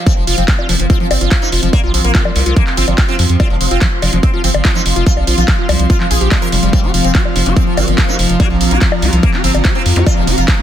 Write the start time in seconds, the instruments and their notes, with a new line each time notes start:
0.06 acid bass F3, ambient pad F3, sitar C4, analog synth pad C4, kick, closed hi-hat
0.17 analog synth bass F1, sitar F3, analog synth pad F4
0.27 analog synth bass F1, sitar F3, acid bass F4, open hi-hat
0.38 analog synth bass F1, acid bass F3, sitar C4, closed hi-hat
0.48 sitar F3, analog synth pad F5, kick, clap, closed hi-hat
0.59 acid bass F4, high bongo
0.69 analog synth bass F1, acid bass F3, sitar F3, wobble bass C4, open hi-hat
0.79 analog synth bass F1, sitar F3, wobble bass C4, closed hi-hat
0.90 sitar C4, acid bass F4, kick, closed hi-hat
1.00 acid bass F3, sitar F3
1.11 analog synth bass G1, sitar C4, open hi-hat, high bongo
1.21 analog synth bass G1, sitar F3, acid bass F4, closed hi-hat
1.30 sitar F3, acid bass F3, analog synth pad C6, kick, clap, closed hi-hat
1.42 sitar D#4
1.52 analog synth bass F1, sitar F3, acid bass F4, open hi-hat
1.63 analog synth bass F1, acid bass F3, sitar F3, closed hi-hat
1.73 sitar A#3, kick, closed hi-hat, high bongo
1.84 analog synth bass A#1, sitar C3, acid bass F4
1.94 analog synth bass A#1, sitar C3, acid bass F3, open hi-hat
2.04 analog synth bass A#1, wobble bass A#3, sitar A#3, closed hi-hat
2.15 sitar C3, acid bass F4, kick, clap, closed hi-hat
2.25 acid bass F3, high bongo
2.36 analog synth bass C2, sitar C3, open hi-hat
2.46 analog synth bass C2, sitar C3, acid bass F4, closed hi-hat
2.56 acid bass F3, sitar A#3, kick, closed hi-hat
2.67 sitar C3, clap
2.77 analog synth bass G1, sitar C4, acid bass F4, open hi-hat
2.88 analog synth bass G1, sitar C3, acid bass F3, closed hi-hat, high bongo
2.98 kick, clap, closed hi-hat
3.09 sitar C4, acid bass F4
3.19 analog synth bass F2, sitar C3, acid bass F3, open hi-hat
3.29 analog synth bass F2, sitar C3, closed hi-hat
3.40 sitar C4, acid bass F4, kick, closed hi-hat, high bongo
3.50 analog synth bass F1, acid bass F3, sitar F3
3.61 analog synth bass F1, sitar F3, open hi-hat
3.71 analog synth bass F1, sitar C4, acid bass F4, closed hi-hat
3.81 sitar F3, acid bass F3, kick, clap, closed hi-hat
4.02 analog synth bass F1, sitar F3, acid bass F4, open hi-hat, high bongo
4.13 analog synth bass F1, sitar F3, acid bass F3, closed hi-hat
4.23 sitar C4, kick, closed hi-hat
4.34 sitar F3, acid bass F4
4.44 analog synth bass G1, acid bass F3, sitar C4, open hi-hat
4.54 analog synth bass G1, sitar F3, closed hi-hat, high bongo
4.65 sitar F3, acid bass F4, kick, clap, closed hi-hat
4.75 acid bass F3, sitar D#4
4.86 analog synth bass F1, sitar F3, open hi-hat
4.96 analog synth bass F1, sitar F3, acid bass F4, closed hi-hat
5.06 acid bass F3, sitar F4, kick, closed hi-hat
5.17 analog synth bass A#1, sitar F3, high bongo
5.27 analog synth bass A#1, sitar F3, acid bass F4, open hi-hat
5.38 analog synth bass A#1, acid bass F3, sitar F4, closed hi-hat
5.48 sitar F3, kick, clap, closed hi-hat
5.59 acid bass F4
5.69 analog synth bass C2, acid bass F3, sitar F3, open hi-hat, high bongo
5.79 analog synth bass C2, sitar F3, closed hi-hat
5.90 acid bass F4, sitar F4, kick, closed hi-hat
6.00 acid bass F3, sitar F3, clap
6.11 analog synth bass A#1, sitar G#4, open hi-hat
6.21 analog synth bass A#1, sitar F3, acid bass G4, closed hi-hat
6.32 sitar F3, acid bass G#3, kick, clap, closed hi-hat, high bongo
6.42 acid bass F3, sitar A#4
6.52 analog synth bass F1, sitar F3, acid bass G3, open hi-hat
6.63 analog synth bass F1, sitar F3, acid bass G3, closed hi-hat
6.73 sitar C4, kick, closed hi-hat
6.84 analog synth bass F1, sitar F3, acid bass G4
6.94 analog synth bass F1, sitar F3, acid bass F3, open hi-hat
7.04 analog synth bass F1, sitar C4, closed hi-hat
7.15 sitar F3, acid bass G4, kick, clap, closed hi-hat
7.25 acid bass F3, high bongo
7.36 analog synth bass F1, sitar F3, wobble bass C4, open hi-hat
7.46 analog synth bass F1, sitar F3, wobble bass C4, acid bass G4, closed hi-hat
7.56 acid bass F3, sitar C4, kick, closed hi-hat
7.67 sitar F3
7.77 analog synth bass G1, wobble bass A#3, sitar C4, acid bass G4, open hi-hat, high bongo
7.88 analog synth bass G1, acid bass F3, sitar F3, closed hi-hat
7.97 sitar F3, analog synth pad A#5, kick, clap, closed hi-hat
8.09 sitar D#4, acid bass G4
8.19 analog synth bass F1, acid bass F3, sitar F3, open hi-hat
8.29 analog synth bass F1, sitar F3, closed hi-hat
8.40 sitar A#3, acid bass G4, kick, closed hi-hat, high bongo
8.50 analog synth bass A#1, sitar C3, acid bass F3
8.61 analog synth bass A#1, sitar C3, open hi-hat
8.71 analog synth bass A#1, sitar A#3, acid bass G4, closed hi-hat
8.81 sitar C3, acid bass F3, kick, clap, closed hi-hat
8.92 high bongo
9.02 analog synth bass C2, sitar C3, acid bass G4, open hi-hat
9.13 analog synth bass C2, sitar C3, acid bass F3, closed hi-hat
9.23 sitar A#3, kick, closed hi-hat
9.34 sitar C3, acid bass G4, clap
9.44 analog synth bass G1, acid bass F3, sitar C4, open hi-hat
9.54 analog synth bass G1, sitar C3, closed hi-hat, high bongo
9.65 sitar C3, acid bass G4, kick, clap, closed hi-hat
9.75 acid bass F3, sitar C4
9.86 analog synth bass F2, sitar C3, open hi-hat
9.96 analog synth bass F2, sitar C3, acid bass G4, closed hi-hat, zap
10.06 acid bass F3, sitar F4, kick, closed hi-hat, high bongo
10.17 analog synth bass F1, sitar F3
10.27 analog synth bass F1, sitar F3, acid bass G4, open hi-hat
10.38 analog synth bass F1, acid bass F3, sitar F4, closed hi-hat
10.48 sitar F3, kick, clap, closed hi-hat
10.59 acid bass G4